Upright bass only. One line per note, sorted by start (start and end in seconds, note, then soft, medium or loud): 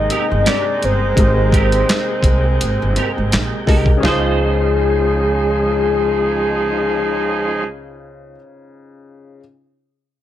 0.31 0.45 G1 medium
0.83 1.15 G1 medium
1.18 1.82 G#1 loud
2.23 2.56 C2 loud
2.63 2.79 G#1 medium
2.82 2.95 G1 loud
3.18 3.31 G#1 medium
3.33 3.50 A#1 medium
3.68 4.00 C2 medium
4.05 8.36 C#2 loud